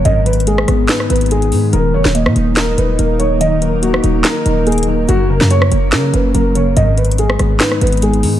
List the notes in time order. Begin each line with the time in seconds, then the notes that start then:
0.05 G#1 G#2 G#3 B3 D#4 B4 D#5, closed hi-hat
0.26 D#3 B4, closed hi-hat
0.33 closed hi-hat
0.40 closed hi-hat
0.47 G#3 G#4, closed hi-hat
0.58 cross-stick
0.68 G#1 B3, cross-stick, closed hi-hat
0.89 D#4 B4, snare, clap, closed hi-hat
1.00 cross-stick
1.10 G#1 B3 B4, closed hi-hat
1.16 closed hi-hat
1.21 closed hi-hat
1.26 closed hi-hat
1.31 G#3 G#4, closed hi-hat
1.42 closed hi-hat
1.52 G#2 D#3, open hi-hat
1.73 D#1 D#3 F#3 A#3 A#4, closed hi-hat
1.94 F1 F#3 C#5
2.05 D#1, snare
2.15 A#3 D#5, closed hi-hat
2.26 A#2, cross-stick
2.36 D#1 D#4, closed hi-hat
2.57 A#4 D#5, snare, clap, closed hi-hat
2.78 D#1 D#4 B4, closed hi-hat
2.99 D#1 A#3 A#4, closed hi-hat
3.19 F#3 C#5, closed hi-hat
3.41 D#3 D#5, closed hi-hat
3.62 F#3 A#4, closed hi-hat
3.82 A#3 F#4, closed hi-hat
3.94 cross-stick
4.04 D#1 D#4, closed hi-hat
4.24 A#4 D#5, snare, clap, closed hi-hat
4.45 D#1 D#4 A#4, closed hi-hat
4.67 A#3 G#4, closed hi-hat
4.72 closed hi-hat
4.78 closed hi-hat
4.83 closed hi-hat
4.88 F#3 A#4
5.08 F#1 F#2 F#3 C#4 F#4, closed hi-hat
5.30 C#3 A#4
5.41 F#2, snare
5.51 F#3 C#5, closed hi-hat
5.62 cross-stick
5.72 F#1 A#3, closed hi-hat
5.92 C#3 C#4 A#4, snare, clap, closed hi-hat
6.14 F#1 A#3 B4, closed hi-hat
6.35 F#1 F#3 A#4, closed hi-hat
6.55 C#3 C#5, closed hi-hat
6.77 G#1 G#2 G#3 B3 D#4 B4 D#5, closed hi-hat
6.98 D#3 B4, closed hi-hat
7.05 closed hi-hat
7.11 closed hi-hat
7.18 G#3 G#4, closed hi-hat
7.30 cross-stick
7.39 G#1 B3, cross-stick, closed hi-hat
7.60 D#4 B4, snare, clap, closed hi-hat
7.72 cross-stick
7.81 G#1 B3 B4, closed hi-hat
7.87 closed hi-hat
7.92 closed hi-hat
7.97 closed hi-hat
8.02 G#3 G#4, closed hi-hat
8.13 closed hi-hat
8.23 G#2 D#3, open hi-hat